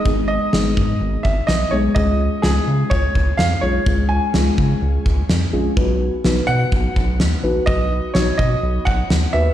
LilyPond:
<<
  \new Staff \with { instrumentName = "Grand piano" } { \time 4/4 \key cis \dorian \tempo 4 = 126 dis''8 dis''2 e''8 dis''8 cis''8 | dis''4 gis'4 cis''4 eis''8 cis''8~ | cis''8 gis''2. r8 | r4. fis''2~ fis''8 |
dis''4 cis''8 dis''4 fis''4 e''8 | }
  \new Staff \with { instrumentName = "Synth keys" } { \time 4/4 \key cis \dorian <gis b dis' gis'>4 <gis b dis' gis'>4. r4 <gis b dis' gis'>8 | <gis cis' eis' gis'>4 <gis cis' eis' gis'>4. r4 <gis cis' eis' gis'>8 | <gis cis' eis' gis'>4 <gis cis' eis' gis'>4. r4 <gis cis' eis' gis'>8 | <b dis' fis' b'>4 <b dis' fis' b'>4. r4 <b dis' fis' b'>8 |
<b dis' fis' b'>4 <b dis' fis' cis''>4. r4 <b dis' fis' b'>8 | }
  \new Staff \with { instrumentName = "Analog synth bass" } { \clef bass \time 4/4 \key cis \dorian gis,,4 gis,,8 gis,8 gis,,8 gis,,8 b,,8 b,,8 | cis,4 cis,8 cis8 cis,8 cis,8 eis,8 b,,8 | cis,4 cis,8 cis8 cis,8 cis,8 eis,8 ais,,8 | b,,4 b,,8 b,8 b,,8 b,,8 dis,8 ais,,8 |
b,,4 b,,8 b,8 b,,8 b,,8 dis,8 dis,8 | }
  \new DrumStaff \with { instrumentName = "Drums" } \drummode { \time 4/4 bd4 sn8 bd8 r8 bd8 sn4 | bd4 sn4 bd8 bd8 sn4 | bd4 sn8 bd8 r8 bd8 sn4 | bd4 sn4 bd8 bd8 sn4 |
bd4 sn8 bd8 r8 bd8 sn4 | }
>>